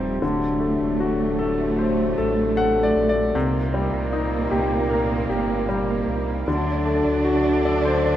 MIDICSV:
0, 0, Header, 1, 5, 480
1, 0, Start_track
1, 0, Tempo, 782269
1, 137, Time_signature, 4, 2, 24, 8
1, 5011, End_track
2, 0, Start_track
2, 0, Title_t, "Grand piano"
2, 0, Program_c, 0, 0
2, 0, Control_c, 0, 64, 127
2, 0, Note_on_c, 0, 53, 65
2, 0, Note_on_c, 0, 60, 55
2, 0, Note_on_c, 0, 69, 51
2, 0, Note_on_c, 0, 72, 56
2, 114, Note_off_c, 0, 53, 0
2, 114, Note_off_c, 0, 69, 0
2, 118, Note_off_c, 0, 72, 0
2, 123, Note_off_c, 0, 60, 0
2, 136, Note_on_c, 0, 50, 69
2, 146, Control_c, 0, 64, 0
2, 243, Control_c, 0, 64, 127
2, 368, Note_on_c, 0, 57, 53
2, 615, Note_on_c, 0, 66, 57
2, 851, Note_on_c, 0, 69, 58
2, 1096, Note_on_c, 0, 72, 53
2, 1311, Note_off_c, 0, 57, 0
2, 1327, Note_off_c, 0, 69, 0
2, 1336, Note_on_c, 0, 69, 59
2, 1554, Note_off_c, 0, 66, 0
2, 1577, Note_on_c, 0, 57, 56
2, 1578, Note_on_c, 0, 78, 76
2, 1727, Note_off_c, 0, 78, 0
2, 1738, Note_on_c, 0, 74, 71
2, 1887, Note_off_c, 0, 74, 0
2, 1897, Note_on_c, 0, 74, 73
2, 2033, Note_off_c, 0, 50, 0
2, 2033, Note_off_c, 0, 72, 0
2, 2035, Note_off_c, 0, 69, 0
2, 2043, Note_off_c, 0, 57, 0
2, 2046, Note_off_c, 0, 74, 0
2, 2056, Note_on_c, 0, 48, 74
2, 2066, Control_c, 0, 64, 0
2, 2189, Control_c, 0, 64, 127
2, 2294, Note_on_c, 0, 55, 54
2, 2532, Note_on_c, 0, 63, 61
2, 2769, Note_on_c, 0, 67, 61
2, 3008, Note_on_c, 0, 70, 58
2, 3227, Note_off_c, 0, 55, 0
2, 3241, Note_off_c, 0, 67, 0
2, 3250, Note_on_c, 0, 67, 59
2, 3465, Note_off_c, 0, 63, 0
2, 3490, Note_on_c, 0, 55, 58
2, 3944, Note_off_c, 0, 70, 0
2, 3945, Note_off_c, 0, 48, 0
2, 3948, Note_off_c, 0, 67, 0
2, 3956, Note_off_c, 0, 55, 0
2, 3974, Note_on_c, 0, 50, 67
2, 3979, Control_c, 0, 64, 0
2, 4095, Control_c, 0, 64, 127
2, 4208, Note_on_c, 0, 57, 52
2, 4446, Note_on_c, 0, 66, 55
2, 4695, Note_on_c, 0, 74, 66
2, 4697, Note_on_c, 0, 69, 57
2, 4808, Note_off_c, 0, 74, 0
2, 4818, Note_on_c, 0, 72, 62
2, 4931, Note_off_c, 0, 72, 0
2, 4940, Note_on_c, 0, 74, 61
2, 5011, Note_off_c, 0, 50, 0
2, 5011, Note_off_c, 0, 57, 0
2, 5011, Note_off_c, 0, 66, 0
2, 5011, Note_off_c, 0, 69, 0
2, 5011, Note_off_c, 0, 74, 0
2, 5011, End_track
3, 0, Start_track
3, 0, Title_t, "Harmonium"
3, 0, Program_c, 1, 20
3, 0, Note_on_c, 1, 48, 63
3, 0, Note_on_c, 1, 53, 55
3, 0, Note_on_c, 1, 57, 58
3, 0, Note_on_c, 1, 63, 72
3, 118, Note_off_c, 1, 53, 0
3, 121, Note_off_c, 1, 63, 0
3, 139, Note_on_c, 1, 54, 59
3, 145, Note_on_c, 1, 62, 73
3, 2033, Note_off_c, 1, 57, 0
3, 2040, Note_off_c, 1, 54, 0
3, 2043, Note_off_c, 1, 62, 0
3, 2058, Note_on_c, 1, 58, 67
3, 2061, Note_on_c, 1, 55, 64
3, 2062, Note_on_c, 1, 63, 76
3, 3948, Note_off_c, 1, 48, 0
3, 3952, Note_off_c, 1, 58, 0
3, 3953, Note_off_c, 1, 55, 0
3, 3954, Note_off_c, 1, 63, 0
3, 3970, Note_on_c, 1, 50, 68
3, 3974, Note_on_c, 1, 54, 61
3, 3977, Note_on_c, 1, 66, 72
3, 3978, Note_on_c, 1, 57, 65
3, 5011, Note_off_c, 1, 50, 0
3, 5011, Note_off_c, 1, 54, 0
3, 5011, Note_off_c, 1, 57, 0
3, 5011, Note_off_c, 1, 66, 0
3, 5011, End_track
4, 0, Start_track
4, 0, Title_t, "Cello section"
4, 0, Program_c, 2, 48
4, 0, Note_on_c, 2, 43, 73
4, 0, Note_on_c, 2, 55, 84
4, 123, Note_off_c, 2, 55, 0
4, 124, Note_off_c, 2, 43, 0
4, 126, Note_on_c, 2, 57, 93
4, 130, Note_on_c, 2, 45, 80
4, 2029, Note_off_c, 2, 57, 0
4, 2031, Note_off_c, 2, 45, 0
4, 2059, Note_on_c, 2, 46, 79
4, 2061, Note_on_c, 2, 58, 86
4, 3947, Note_off_c, 2, 46, 0
4, 3948, Note_off_c, 2, 58, 0
4, 3960, Note_on_c, 2, 62, 92
4, 3964, Note_on_c, 2, 50, 78
4, 5011, Note_off_c, 2, 50, 0
4, 5011, Note_off_c, 2, 62, 0
4, 5011, End_track
5, 0, Start_track
5, 0, Title_t, "Sub bass"
5, 0, Program_c, 3, 38
5, 0, Note_on_c, 3, 27, 88
5, 120, Note_off_c, 3, 27, 0
5, 138, Note_on_c, 3, 26, 101
5, 473, Note_off_c, 3, 26, 0
5, 492, Note_on_c, 3, 26, 100
5, 1313, Note_off_c, 3, 26, 0
5, 1341, Note_on_c, 3, 33, 93
5, 1796, Note_off_c, 3, 33, 0
5, 1816, Note_on_c, 3, 34, 98
5, 2040, Note_off_c, 3, 34, 0
5, 2056, Note_on_c, 3, 36, 115
5, 2391, Note_off_c, 3, 36, 0
5, 2413, Note_on_c, 3, 36, 93
5, 2748, Note_off_c, 3, 36, 0
5, 2773, Note_on_c, 3, 36, 89
5, 3227, Note_off_c, 3, 36, 0
5, 3250, Note_on_c, 3, 31, 97
5, 3705, Note_off_c, 3, 31, 0
5, 3726, Note_on_c, 3, 36, 99
5, 3951, Note_off_c, 3, 36, 0
5, 3970, Note_on_c, 3, 38, 106
5, 4307, Note_off_c, 3, 38, 0
5, 4330, Note_on_c, 3, 38, 92
5, 5011, Note_off_c, 3, 38, 0
5, 5011, End_track
0, 0, End_of_file